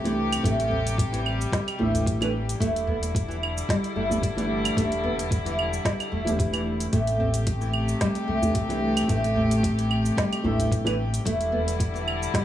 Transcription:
Already playing: C2 C3 A3 G4
0.04 E3 A3 D4 G4, closed hi-hat, cabasa
0.32 closed hi-hat, cabasa, claves
0.43 A1 E3 G3 A3 D4 G4, kick, closed hi-hat, cabasa
0.60 closed hi-hat, cabasa
0.71 C4, udu
0.87 closed hi-hat, cabasa
0.98 kick, closed hi-hat, cabasa
1.13 E3, closed hi-hat, cabasa
1.26 claves
1.41 cabasa
1.52 G3, kick, snare, closed hi-hat, cabasa
1.68 closed hi-hat, cabasa, claves
1.79 A1 E3 A3 D4 E4, udu
1.94 closed hi-hat, udu, cabasa
2.06 kick, closed hi-hat, cabasa
2.21 E3 A3 D4 B4, closed hi-hat, cabasa, claves
2.49 closed hi-hat, cabasa
2.60 E1 D3 G3 A3 E4, kick, closed hi-hat, cabasa
2.76 closed hi-hat, cabasa
2.87 B3, udu
3.03 closed hi-hat, cabasa
3.15 kick, closed hi-hat, cabasa
3.28 E3, cabasa
3.43 claves
3.58 cabasa
3.69 G3, kick, snare, closed hi-hat, cabasa
3.84 closed hi-hat, cabasa
3.96 G1 A3
4.10 E3 A3 D4 G4, udu, cabasa
4.23 kick, closed hi-hat, cabasa
4.36 E3 A3 D4 G4, closed hi-hat, cabasa
4.65 closed hi-hat, cabasa, claves
4.77 E1 E3 A3 D4 G4, kick, closed hi-hat, cabasa
4.92 closed hi-hat, cabasa
5.03 B3, udu
5.19 closed hi-hat, cabasa
5.31 kick, closed hi-hat, cabasa
5.45 E3, closed hi-hat, cabasa
5.59 claves
5.73 cabasa
5.85 G3, kick, snare, closed hi-hat, cabasa
6.00 closed hi-hat, cabasa, claves
6.12 E1 A3, udu
6.25 E3 A3 D4, closed hi-hat, udu, cabasa
6.29 G4
6.39 kick, closed hi-hat, cabasa
6.53 E3, closed hi-hat, cabasa, claves
6.80 closed hi-hat, cabasa
6.93 A1 C3 A3 G4, kick, closed hi-hat, cabasa
7.07 closed hi-hat, cabasa
7.20 C4, udu
7.34 closed hi-hat, cabasa
7.47 kick, closed hi-hat, cabasa
7.61 E3, cabasa
7.73 claves
7.89 cabasa
8.01 G3, kick, snare, closed hi-hat, cabasa
8.15 closed hi-hat, cabasa
8.28 C2 A3
8.42 E3 A3 D4 G4, udu, cabasa
8.55 kick, closed hi-hat, cabasa
8.69 E3 A3 D4 G4, closed hi-hat, cabasa
8.97 closed hi-hat, cabasa, claves
9.08 A1 E3 A3 D4 G4, kick, closed hi-hat, cabasa
9.24 closed hi-hat, cabasa
9.36 C4, udu
9.51 closed hi-hat, cabasa
9.63 kick, closed hi-hat, cabasa
9.78 E3, closed hi-hat, cabasa
9.91 claves
10.06 cabasa
10.17 G3, kick, snare, closed hi-hat, cabasa
10.33 closed hi-hat, cabasa, claves
10.44 A1 E3 A3 D4 E4, udu
10.58 closed hi-hat, udu, cabasa
10.72 kick, closed hi-hat, cabasa
10.85 E3 A3 D4 B4, closed hi-hat, cabasa, claves
11.14 closed hi-hat, cabasa
11.25 E1 D3 G3 A3 E4, kick, closed hi-hat, cabasa
11.41 closed hi-hat, cabasa
11.52 B3, udu
11.68 closed hi-hat, cabasa
11.80 kick, closed hi-hat, cabasa
11.94 E3, cabasa
12.08 claves
12.23 cabasa
12.34 G3, kick, snare, closed hi-hat, cabasa

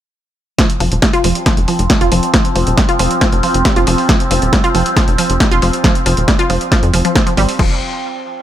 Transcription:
0.58 F3 C4, kick, snare, closed hi-hat
0.70 closed hi-hat
0.80 F1 F3, open hi-hat
0.92 D#1, closed hi-hat
1.02 G3, kick, snare, closed hi-hat
1.13 F4, closed hi-hat
1.24 F1 F3, open hi-hat
1.35 closed hi-hat
1.46 F3, kick, snare, closed hi-hat
1.57 F1, closed hi-hat
1.68 F3, open hi-hat
1.79 F1, closed hi-hat
1.90 G3, kick, snare, closed hi-hat
2.01 F1 F4, closed hi-hat
2.12 F1 F3, open hi-hat
2.23 closed hi-hat
2.34 F3, kick, snare, closed hi-hat
2.45 closed hi-hat
2.56 F1 F3, open hi-hat
2.67 D#1, closed hi-hat
2.77 G3, kick, snare, closed hi-hat
2.89 F4, closed hi-hat
2.99 F1 F3, open hi-hat
3.11 closed hi-hat
3.21 F3, kick, snare, closed hi-hat
3.32 F1, closed hi-hat
3.43 F3, open hi-hat
3.54 F1, closed hi-hat
3.65 G3, kick, snare, closed hi-hat
3.76 F1 F4, closed hi-hat
3.87 F1 F3, open hi-hat
3.98 open hi-hat
4.09 F3, kick, snare, closed hi-hat
4.20 closed hi-hat
4.31 F1 F3, open hi-hat
4.42 D#1, closed hi-hat
4.53 G3, kick, snare, closed hi-hat
4.64 F4, closed hi-hat
4.75 F1 F3, open hi-hat
4.86 closed hi-hat
4.96 F3, kick, snare, closed hi-hat
5.08 F1, closed hi-hat
5.18 F3, open hi-hat
5.30 F1, closed hi-hat
5.40 G3, kick, snare, closed hi-hat
5.51 F1 F4, closed hi-hat
5.62 F1 F3, open hi-hat
5.73 closed hi-hat
5.84 F3, kick, snare, closed hi-hat
5.95 closed hi-hat
6.06 F1 F3, open hi-hat
6.17 D#1, closed hi-hat
6.28 G3, kick, snare, closed hi-hat
6.39 F4, closed hi-hat
6.50 F1 F3, open hi-hat
6.61 closed hi-hat
6.72 F3, kick, snare, closed hi-hat
6.83 F2, closed hi-hat
6.94 F1 F3, open hi-hat
7.05 F3, closed hi-hat
7.15 F3, kick, snare, closed hi-hat
7.27 F3, closed hi-hat
7.37 G#1 G3, open hi-hat
7.49 open hi-hat
7.59 F1 F3, kick, crash

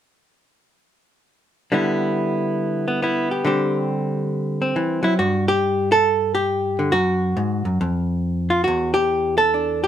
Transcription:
1.72 D3 G3 B3 E4
2.88 B3
3.02 B3 E4
3.31 G4
3.45 D3 G3 C4 G4
4.62 C4
4.76 E3
5.03 F#3 E4
5.19 G2 F#4
5.48 G4
5.92 A4
6.35 G4
6.79 D3
6.92 F#2 F#4
7.37 G#2
7.65 F#2
7.81 F2
8.50 F4
8.64 E2 F#4
8.94 G4
9.38 A4
9.54 D4
9.84 G4

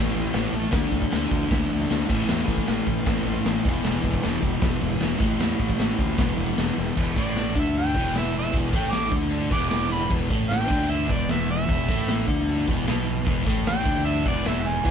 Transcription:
Already playing: A2 E3 A3
0.14 A1
0.33 A1, snare, crash
0.53 A1
0.71 D2 D3 A3 D4, kick, snare, crash
0.92 D2, kick
1.02 kick
1.12 D2, snare, crash
1.31 D2, kick
1.51 D2, kick, snare, crash
1.72 D2
1.90 D2, snare, crash
2.07 A1 A2 E3 A3, kick, crash
2.28 E2, snare, crash
2.47 A1, kick
2.58 kick
2.67 A1, snare, crash
2.87 A1, kick
3.06 A1, kick, snare, crash
3.25 A1
3.45 A1, snare, crash
3.65 E1 E2 B2 E3, kick
3.84 E1, snare, crash
4.04 E1, kick
4.14 kick
4.23 E1, snare, crash
4.43 E1, kick
4.61 E1, kick, snare, crash
4.81 E1
5.00 E1, snare, crash
5.18 A1 A2 E3 A3, kick
5.39 E2, snare, crash
5.60 A1, kick
5.70 kick
5.78 A1, snare, crash
5.99 D2, kick
6.17 E1 E2 B2, kick, snare, crash
6.21 E3
6.38 E1
6.57 E1, snare, crash
6.78 E1
6.97 E1 E2 E3, kick, crash
7.16 A1 A2 A3 D5, kick
7.36 snare, crash
7.55 D2 D3 D4 E5, kick
7.74 G5, crash
7.94 E1 E2 E3, kick
8.15 E5, snare, crash
8.38 E5
8.52 E1 E2 E3, kick, crash
8.72 A1 A2 A3 G5, kick
8.92 D6, snare, crash
9.11 D2 D3 D4, kick
9.31 crash
9.49 E1 E2 E3 D6, kick
9.70 D6, snare, crash
9.92 B5
10.10 E1 E2 E3, kick, crash
10.29 A1 A2 A3, kick
10.49 G5, snare, crash
10.68 D2 D3 D4, kick
10.90 E5, crash
11.08 E1 E2 E3 D5, kick
11.29 E5, snare, crash
11.51 E5
11.67 E1 E2 E3, kick, crash
11.88 A1 A2 A3, kick
12.08 snare, crash
12.27 D2 D3 D4, kick
12.49 crash
12.68 E1 E2 E3, kick
12.86 B1 B2 B3, snare, crash
13.25 E1 E2 E3, kick, crash
13.45 A1 A2 A3, kick
13.66 G5, snare, crash
13.85 D2 D3 D4, kick
14.05 E5, crash
14.26 E1 E2 E3 D5, kick
14.45 E5, snare, crash
14.68 G#5
14.85 E1 E2 E3, kick, crash

